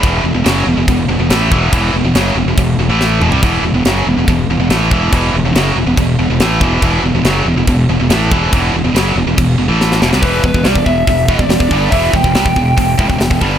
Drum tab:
CC |x---x---x---x---|x---x---x-------|x---x---x---x---|x---x---x---x---|
HH |----------------|----------------|----------------|----------------|
SD |----o-------o---|----o-------o---|----o-------o---|----o-------o---|
T2 |----------------|--------------o-|----------------|----------------|
FT |----------------|---------------o|----------------|----------------|
BD |o-------o-----o-|o-------o-------|o-------o-----o-|o-------o-----o-|

CC |x---x---x---x---|x---x---x-------|----------------|----------------|
HH |----------------|----------------|o---o---o---o---|o---o---o---o---|
SD |----o-------o---|----o-------oooo|----o-------o---|----o-------o---|
T2 |----------------|----------------|----------------|----------------|
FT |----------------|----------------|----------------|----------------|
BD |o-------o-----o-|o-------o-------|o-oo-oo-o-oo-oo-|o-oo-oo-o-oo-oo-|